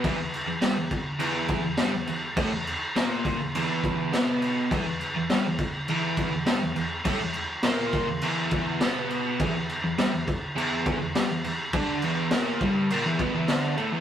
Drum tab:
CC |xxxxxxxx|xxxxxxxx|xxxxxxxx|xxxxxxxx|
SD |--o---o-|--o---o-|--o---o-|--o---o-|
BD |o--o-o--|o--o-o--|o--o-o--|o--o-o--|

CC |xxxxxxxx|xxxxxxxx|
SD |--o---o-|--o---o-|
BD |o--o-o--|o--o-o--|